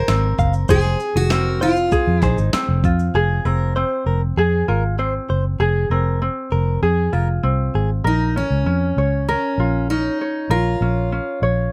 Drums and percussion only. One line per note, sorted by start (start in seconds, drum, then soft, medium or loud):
0.08 snare loud
0.08 clap medium
0.08 shaker medium
0.39 kick medium
0.39 shaker medium
0.53 shaker soft
0.68 kick loud
0.68 shaker medium
0.84 snare soft
1.00 shaker soft
1.30 snare loud
1.30 clap medium
1.30 shaker medium
1.62 shaker medium
1.76 shaker soft
1.92 kick medium
1.92 shaker medium
2.22 kick medium
2.22 clap medium
2.22 shaker medium
2.38 shaker soft
2.53 snare loud
2.53 clap medium
2.53 shaker medium
2.84 kick medium
2.84 shaker soft
2.99 shaker soft